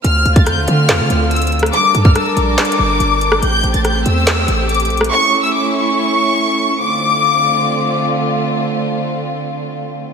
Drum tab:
HH |x-----------x-----x-----x-----------x-----------x-----------x-----------x--x--x--x--x---x---x---|x-----------x-----------x-----------x-----------x---x---x---------------x-----------x-----------|x-----------x-----x-----x-----------x-----------x-----------x-----------x--x--x--x--x---x---x---|------------------------------------------------------------------------------------------------|
CP |------------------------------------------------x-----------------------------------------------|------------------------------------------------x-----------------------------------------------|------------------------------------------------x-----------------------------------------------|------------------------------------------------------------------------------------------------|
SD |------------------------r-----------------------o-----------------------------------------r-----|------------------------r-----------------------o-----------------------------------------r-----|------------------------r-----------------------o-----------------------------------------r-----|------------------------------------------------------------------------------------------------|
BD |------------------o-----------------------------------------------------------------------------|------------------o-----------------------------------------------------------------------------|------------------------------------------------------------------------------------------------|------------------------------------------------------------------------------------------------|

HH |------------------------------------------------------------------------------------------------|------------------------------------------------------------------------------------------------|
CP |------------------------------------------------------------------------------------------------|------------------------------------------------------------------------------------------------|
SD |------------------------------------------------------------------------------------------------|------------------------------------------------------------------------------------------------|
BD |------------------------------------------------------------------------------------------------|------------------------------------------------------------------------------------------------|